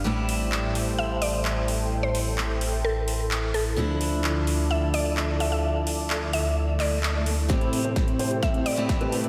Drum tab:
HH |--o---o---o---o-|--o---o---o---o-|--o---o---o---o-|--o---o---o---o-|
CP |----x-------x---|----x-------x---|----x-------x---|----x-----x-x---|
SD |----------------|----------------|----------------|----------------|
BD |----------------|----------------|----------------|----------------|

HH |xxoxxxoxxxoxxxox|
CP |----------------|
SD |o---o---o---o---|
BD |o---o---o---o---|